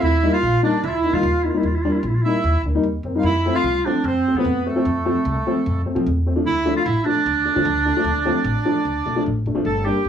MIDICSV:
0, 0, Header, 1, 5, 480
1, 0, Start_track
1, 0, Tempo, 401338
1, 31, Time_signature, 4, 2, 24, 8
1, 12065, End_track
2, 0, Start_track
2, 0, Title_t, "Accordion"
2, 0, Program_c, 0, 21
2, 0, Note_on_c, 0, 64, 90
2, 383, Note_off_c, 0, 64, 0
2, 385, Note_on_c, 0, 65, 88
2, 724, Note_off_c, 0, 65, 0
2, 764, Note_on_c, 0, 62, 70
2, 1000, Note_on_c, 0, 64, 82
2, 1007, Note_off_c, 0, 62, 0
2, 1367, Note_on_c, 0, 65, 70
2, 1369, Note_off_c, 0, 64, 0
2, 1698, Note_off_c, 0, 65, 0
2, 2683, Note_on_c, 0, 64, 90
2, 3131, Note_off_c, 0, 64, 0
2, 3807, Note_on_c, 0, 65, 55
2, 3885, Note_off_c, 0, 65, 0
2, 3887, Note_on_c, 0, 64, 75
2, 4240, Note_on_c, 0, 65, 95
2, 4255, Note_off_c, 0, 64, 0
2, 4575, Note_off_c, 0, 65, 0
2, 4601, Note_on_c, 0, 62, 70
2, 4848, Note_off_c, 0, 62, 0
2, 4872, Note_on_c, 0, 60, 82
2, 5226, Note_off_c, 0, 60, 0
2, 5239, Note_on_c, 0, 59, 69
2, 5573, Note_on_c, 0, 57, 67
2, 5590, Note_off_c, 0, 59, 0
2, 6958, Note_off_c, 0, 57, 0
2, 7735, Note_on_c, 0, 64, 75
2, 8062, Note_off_c, 0, 64, 0
2, 8095, Note_on_c, 0, 65, 88
2, 8210, Note_off_c, 0, 65, 0
2, 8226, Note_on_c, 0, 64, 72
2, 8436, Note_off_c, 0, 64, 0
2, 8479, Note_on_c, 0, 62, 87
2, 11045, Note_off_c, 0, 62, 0
2, 11542, Note_on_c, 0, 69, 65
2, 11776, Note_on_c, 0, 67, 65
2, 11794, Note_off_c, 0, 69, 0
2, 12065, Note_off_c, 0, 67, 0
2, 12065, End_track
3, 0, Start_track
3, 0, Title_t, "Clarinet"
3, 0, Program_c, 1, 71
3, 37, Note_on_c, 1, 64, 102
3, 370, Note_off_c, 1, 64, 0
3, 397, Note_on_c, 1, 65, 105
3, 731, Note_off_c, 1, 65, 0
3, 765, Note_on_c, 1, 62, 92
3, 1001, Note_on_c, 1, 64, 85
3, 1019, Note_off_c, 1, 62, 0
3, 1058, Note_on_c, 1, 65, 80
3, 1076, Note_off_c, 1, 64, 0
3, 1137, Note_on_c, 1, 64, 110
3, 1155, Note_off_c, 1, 65, 0
3, 1362, Note_on_c, 1, 65, 98
3, 1380, Note_off_c, 1, 64, 0
3, 1715, Note_on_c, 1, 64, 73
3, 1733, Note_off_c, 1, 65, 0
3, 1792, Note_on_c, 1, 65, 67
3, 1810, Note_off_c, 1, 64, 0
3, 1886, Note_on_c, 1, 64, 73
3, 1904, Note_off_c, 1, 65, 0
3, 1990, Note_on_c, 1, 65, 77
3, 2008, Note_off_c, 1, 64, 0
3, 2094, Note_on_c, 1, 64, 68
3, 2112, Note_off_c, 1, 65, 0
3, 2172, Note_on_c, 1, 65, 72
3, 2190, Note_off_c, 1, 64, 0
3, 2301, Note_on_c, 1, 64, 68
3, 2319, Note_off_c, 1, 65, 0
3, 2388, Note_on_c, 1, 65, 66
3, 2406, Note_off_c, 1, 64, 0
3, 2480, Note_on_c, 1, 64, 67
3, 2498, Note_off_c, 1, 65, 0
3, 2572, Note_on_c, 1, 65, 70
3, 2590, Note_off_c, 1, 64, 0
3, 2657, Note_on_c, 1, 64, 90
3, 2675, Note_off_c, 1, 65, 0
3, 3152, Note_off_c, 1, 64, 0
3, 3885, Note_on_c, 1, 64, 103
3, 4218, Note_off_c, 1, 64, 0
3, 4253, Note_on_c, 1, 65, 101
3, 4604, Note_on_c, 1, 62, 100
3, 4622, Note_off_c, 1, 65, 0
3, 4848, Note_on_c, 1, 60, 88
3, 4866, Note_off_c, 1, 62, 0
3, 5212, Note_on_c, 1, 59, 91
3, 5230, Note_off_c, 1, 60, 0
3, 5558, Note_off_c, 1, 59, 0
3, 5565, Note_on_c, 1, 57, 67
3, 6954, Note_off_c, 1, 57, 0
3, 7730, Note_on_c, 1, 64, 109
3, 8059, Note_off_c, 1, 64, 0
3, 8087, Note_on_c, 1, 65, 99
3, 8184, Note_off_c, 1, 65, 0
3, 8191, Note_on_c, 1, 64, 98
3, 8422, Note_on_c, 1, 62, 105
3, 8440, Note_off_c, 1, 64, 0
3, 11065, Note_off_c, 1, 62, 0
3, 11551, Note_on_c, 1, 69, 90
3, 11782, Note_on_c, 1, 67, 100
3, 11800, Note_off_c, 1, 69, 0
3, 12065, Note_off_c, 1, 67, 0
3, 12065, End_track
4, 0, Start_track
4, 0, Title_t, "Upright piano"
4, 0, Program_c, 2, 0
4, 279, Note_on_c, 2, 55, 78
4, 281, Note_on_c, 2, 58, 69
4, 284, Note_on_c, 2, 63, 81
4, 396, Note_off_c, 2, 55, 0
4, 397, Note_off_c, 2, 58, 0
4, 399, Note_off_c, 2, 63, 0
4, 750, Note_on_c, 2, 55, 60
4, 753, Note_on_c, 2, 58, 59
4, 754, Note_on_c, 2, 63, 81
4, 873, Note_off_c, 2, 55, 0
4, 874, Note_off_c, 2, 58, 0
4, 874, Note_off_c, 2, 63, 0
4, 1238, Note_on_c, 2, 58, 38
4, 1243, Note_on_c, 2, 63, 45
4, 1297, Note_off_c, 2, 58, 0
4, 1299, Note_off_c, 2, 63, 0
4, 1349, Note_on_c, 2, 55, 60
4, 1352, Note_on_c, 2, 58, 58
4, 1352, Note_on_c, 2, 63, 73
4, 1473, Note_off_c, 2, 55, 0
4, 1474, Note_off_c, 2, 58, 0
4, 1474, Note_off_c, 2, 63, 0
4, 1718, Note_on_c, 2, 58, 43
4, 1720, Note_on_c, 2, 63, 52
4, 1777, Note_off_c, 2, 58, 0
4, 1778, Note_off_c, 2, 63, 0
4, 1844, Note_on_c, 2, 63, 76
4, 1847, Note_on_c, 2, 55, 71
4, 1848, Note_on_c, 2, 58, 69
4, 1961, Note_off_c, 2, 63, 0
4, 1962, Note_off_c, 2, 55, 0
4, 1963, Note_off_c, 2, 58, 0
4, 2211, Note_on_c, 2, 55, 68
4, 2212, Note_on_c, 2, 62, 91
4, 2215, Note_on_c, 2, 58, 63
4, 2325, Note_off_c, 2, 55, 0
4, 2325, Note_off_c, 2, 62, 0
4, 2326, Note_off_c, 2, 58, 0
4, 2696, Note_on_c, 2, 55, 58
4, 2697, Note_on_c, 2, 58, 59
4, 2699, Note_on_c, 2, 63, 68
4, 2807, Note_off_c, 2, 55, 0
4, 2808, Note_off_c, 2, 58, 0
4, 2809, Note_off_c, 2, 63, 0
4, 3175, Note_on_c, 2, 58, 42
4, 3176, Note_on_c, 2, 62, 44
4, 3227, Note_off_c, 2, 58, 0
4, 3228, Note_off_c, 2, 62, 0
4, 3287, Note_on_c, 2, 55, 68
4, 3292, Note_on_c, 2, 58, 71
4, 3293, Note_on_c, 2, 63, 83
4, 3403, Note_off_c, 2, 55, 0
4, 3406, Note_off_c, 2, 58, 0
4, 3406, Note_off_c, 2, 63, 0
4, 3648, Note_on_c, 2, 60, 55
4, 3650, Note_on_c, 2, 58, 47
4, 3704, Note_off_c, 2, 60, 0
4, 3705, Note_off_c, 2, 58, 0
4, 3766, Note_on_c, 2, 58, 65
4, 3771, Note_on_c, 2, 55, 64
4, 3776, Note_on_c, 2, 63, 74
4, 3883, Note_off_c, 2, 58, 0
4, 3885, Note_off_c, 2, 55, 0
4, 3888, Note_off_c, 2, 63, 0
4, 4135, Note_on_c, 2, 53, 68
4, 4137, Note_on_c, 2, 57, 65
4, 4145, Note_on_c, 2, 60, 77
4, 4248, Note_off_c, 2, 53, 0
4, 4249, Note_off_c, 2, 57, 0
4, 4253, Note_off_c, 2, 60, 0
4, 4613, Note_on_c, 2, 53, 63
4, 4618, Note_on_c, 2, 60, 76
4, 4620, Note_on_c, 2, 57, 60
4, 4727, Note_off_c, 2, 53, 0
4, 4729, Note_off_c, 2, 60, 0
4, 4730, Note_off_c, 2, 57, 0
4, 5120, Note_on_c, 2, 57, 44
4, 5124, Note_on_c, 2, 60, 44
4, 5160, Note_off_c, 2, 57, 0
4, 5163, Note_off_c, 2, 60, 0
4, 5231, Note_on_c, 2, 53, 62
4, 5234, Note_on_c, 2, 57, 64
4, 5236, Note_on_c, 2, 60, 75
4, 5336, Note_off_c, 2, 53, 0
4, 5337, Note_off_c, 2, 57, 0
4, 5339, Note_off_c, 2, 60, 0
4, 5576, Note_on_c, 2, 60, 49
4, 5578, Note_on_c, 2, 57, 44
4, 5628, Note_off_c, 2, 60, 0
4, 5629, Note_off_c, 2, 57, 0
4, 5689, Note_on_c, 2, 57, 64
4, 5692, Note_on_c, 2, 53, 74
4, 5700, Note_on_c, 2, 60, 87
4, 5805, Note_off_c, 2, 57, 0
4, 5806, Note_off_c, 2, 53, 0
4, 5810, Note_off_c, 2, 60, 0
4, 6046, Note_on_c, 2, 53, 84
4, 6046, Note_on_c, 2, 60, 78
4, 6054, Note_on_c, 2, 57, 65
4, 6163, Note_off_c, 2, 53, 0
4, 6163, Note_off_c, 2, 60, 0
4, 6167, Note_off_c, 2, 57, 0
4, 6540, Note_on_c, 2, 53, 73
4, 6540, Note_on_c, 2, 57, 65
4, 6542, Note_on_c, 2, 60, 82
4, 6650, Note_off_c, 2, 53, 0
4, 6650, Note_off_c, 2, 57, 0
4, 6651, Note_off_c, 2, 60, 0
4, 7009, Note_on_c, 2, 60, 58
4, 7011, Note_on_c, 2, 57, 52
4, 7064, Note_off_c, 2, 60, 0
4, 7065, Note_off_c, 2, 57, 0
4, 7116, Note_on_c, 2, 53, 76
4, 7123, Note_on_c, 2, 60, 76
4, 7126, Note_on_c, 2, 57, 63
4, 7238, Note_off_c, 2, 53, 0
4, 7241, Note_off_c, 2, 60, 0
4, 7243, Note_off_c, 2, 57, 0
4, 7493, Note_on_c, 2, 57, 53
4, 7498, Note_on_c, 2, 60, 60
4, 7546, Note_off_c, 2, 57, 0
4, 7549, Note_off_c, 2, 60, 0
4, 7603, Note_on_c, 2, 53, 65
4, 7606, Note_on_c, 2, 62, 77
4, 7607, Note_on_c, 2, 57, 61
4, 7721, Note_off_c, 2, 53, 0
4, 7723, Note_off_c, 2, 57, 0
4, 7723, Note_off_c, 2, 62, 0
4, 7961, Note_on_c, 2, 53, 72
4, 7961, Note_on_c, 2, 57, 77
4, 7966, Note_on_c, 2, 62, 89
4, 8080, Note_off_c, 2, 53, 0
4, 8080, Note_off_c, 2, 57, 0
4, 8082, Note_off_c, 2, 62, 0
4, 8445, Note_on_c, 2, 53, 59
4, 8446, Note_on_c, 2, 57, 61
4, 8447, Note_on_c, 2, 62, 71
4, 8561, Note_off_c, 2, 53, 0
4, 8561, Note_off_c, 2, 57, 0
4, 8562, Note_off_c, 2, 62, 0
4, 8912, Note_on_c, 2, 62, 47
4, 8918, Note_on_c, 2, 57, 37
4, 8974, Note_off_c, 2, 62, 0
4, 8977, Note_off_c, 2, 57, 0
4, 9035, Note_on_c, 2, 62, 83
4, 9041, Note_on_c, 2, 53, 88
4, 9042, Note_on_c, 2, 57, 72
4, 9156, Note_off_c, 2, 62, 0
4, 9159, Note_off_c, 2, 53, 0
4, 9159, Note_off_c, 2, 57, 0
4, 9393, Note_on_c, 2, 62, 63
4, 9397, Note_on_c, 2, 57, 55
4, 9454, Note_off_c, 2, 62, 0
4, 9456, Note_off_c, 2, 57, 0
4, 9525, Note_on_c, 2, 53, 77
4, 9529, Note_on_c, 2, 57, 87
4, 9534, Note_on_c, 2, 62, 90
4, 9640, Note_off_c, 2, 53, 0
4, 9642, Note_off_c, 2, 57, 0
4, 9645, Note_off_c, 2, 62, 0
4, 9871, Note_on_c, 2, 60, 86
4, 9873, Note_on_c, 2, 57, 88
4, 9881, Note_on_c, 2, 53, 96
4, 9993, Note_off_c, 2, 60, 0
4, 9994, Note_off_c, 2, 57, 0
4, 9998, Note_off_c, 2, 53, 0
4, 10349, Note_on_c, 2, 53, 75
4, 10350, Note_on_c, 2, 57, 58
4, 10354, Note_on_c, 2, 62, 86
4, 10471, Note_off_c, 2, 53, 0
4, 10472, Note_off_c, 2, 57, 0
4, 10473, Note_off_c, 2, 62, 0
4, 10830, Note_on_c, 2, 62, 57
4, 10838, Note_on_c, 2, 57, 54
4, 10891, Note_off_c, 2, 62, 0
4, 10895, Note_off_c, 2, 57, 0
4, 10953, Note_on_c, 2, 53, 67
4, 10957, Note_on_c, 2, 57, 74
4, 10961, Note_on_c, 2, 62, 84
4, 11073, Note_off_c, 2, 53, 0
4, 11075, Note_off_c, 2, 57, 0
4, 11077, Note_off_c, 2, 62, 0
4, 11327, Note_on_c, 2, 57, 48
4, 11327, Note_on_c, 2, 62, 55
4, 11379, Note_off_c, 2, 57, 0
4, 11380, Note_off_c, 2, 62, 0
4, 11417, Note_on_c, 2, 57, 79
4, 11424, Note_on_c, 2, 62, 87
4, 11425, Note_on_c, 2, 53, 79
4, 11544, Note_off_c, 2, 57, 0
4, 11548, Note_off_c, 2, 53, 0
4, 11548, Note_off_c, 2, 62, 0
4, 11791, Note_on_c, 2, 58, 69
4, 11793, Note_on_c, 2, 55, 64
4, 11797, Note_on_c, 2, 62, 78
4, 11911, Note_off_c, 2, 58, 0
4, 11912, Note_off_c, 2, 55, 0
4, 11914, Note_off_c, 2, 62, 0
4, 12065, End_track
5, 0, Start_track
5, 0, Title_t, "Upright bass"
5, 0, Program_c, 3, 32
5, 25, Note_on_c, 3, 39, 89
5, 316, Note_off_c, 3, 39, 0
5, 515, Note_on_c, 3, 34, 95
5, 659, Note_off_c, 3, 34, 0
5, 999, Note_on_c, 3, 39, 102
5, 1214, Note_off_c, 3, 39, 0
5, 1351, Note_on_c, 3, 51, 85
5, 1425, Note_off_c, 3, 51, 0
5, 1473, Note_on_c, 3, 39, 101
5, 1763, Note_off_c, 3, 39, 0
5, 1952, Note_on_c, 3, 39, 82
5, 2242, Note_off_c, 3, 39, 0
5, 2427, Note_on_c, 3, 34, 93
5, 2575, Note_off_c, 3, 34, 0
5, 2917, Note_on_c, 3, 39, 91
5, 3062, Note_off_c, 3, 39, 0
5, 3148, Note_on_c, 3, 38, 82
5, 3370, Note_off_c, 3, 38, 0
5, 3389, Note_on_c, 3, 39, 81
5, 3610, Note_off_c, 3, 39, 0
5, 3627, Note_on_c, 3, 41, 77
5, 3849, Note_off_c, 3, 41, 0
5, 3865, Note_on_c, 3, 41, 99
5, 4158, Note_off_c, 3, 41, 0
5, 4348, Note_on_c, 3, 36, 96
5, 4496, Note_off_c, 3, 36, 0
5, 4832, Note_on_c, 3, 41, 97
5, 5050, Note_off_c, 3, 41, 0
5, 5198, Note_on_c, 3, 53, 78
5, 5271, Note_off_c, 3, 53, 0
5, 5318, Note_on_c, 3, 41, 91
5, 5607, Note_off_c, 3, 41, 0
5, 5805, Note_on_c, 3, 41, 96
5, 6091, Note_off_c, 3, 41, 0
5, 6282, Note_on_c, 3, 36, 104
5, 6425, Note_off_c, 3, 36, 0
5, 6771, Note_on_c, 3, 41, 101
5, 6984, Note_off_c, 3, 41, 0
5, 7130, Note_on_c, 3, 53, 93
5, 7199, Note_off_c, 3, 53, 0
5, 7254, Note_on_c, 3, 40, 96
5, 7537, Note_off_c, 3, 40, 0
5, 7732, Note_on_c, 3, 38, 79
5, 8016, Note_off_c, 3, 38, 0
5, 8202, Note_on_c, 3, 33, 103
5, 8345, Note_off_c, 3, 33, 0
5, 8684, Note_on_c, 3, 38, 100
5, 8897, Note_off_c, 3, 38, 0
5, 9045, Note_on_c, 3, 50, 85
5, 9114, Note_off_c, 3, 50, 0
5, 9152, Note_on_c, 3, 38, 111
5, 9441, Note_off_c, 3, 38, 0
5, 9616, Note_on_c, 3, 38, 98
5, 9910, Note_off_c, 3, 38, 0
5, 10099, Note_on_c, 3, 33, 103
5, 10247, Note_off_c, 3, 33, 0
5, 10586, Note_on_c, 3, 38, 90
5, 10732, Note_off_c, 3, 38, 0
5, 10833, Note_on_c, 3, 35, 74
5, 11049, Note_off_c, 3, 35, 0
5, 11078, Note_on_c, 3, 33, 79
5, 11291, Note_off_c, 3, 33, 0
5, 11312, Note_on_c, 3, 32, 69
5, 11528, Note_off_c, 3, 32, 0
5, 11542, Note_on_c, 3, 31, 87
5, 11832, Note_off_c, 3, 31, 0
5, 12018, Note_on_c, 3, 38, 80
5, 12065, Note_off_c, 3, 38, 0
5, 12065, End_track
0, 0, End_of_file